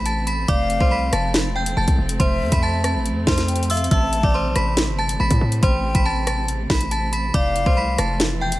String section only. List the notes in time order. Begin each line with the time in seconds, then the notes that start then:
Already playing: C3 E3 A3 C4
0.48 C3 F3
3.91 E3
7.34 E3 F3 A3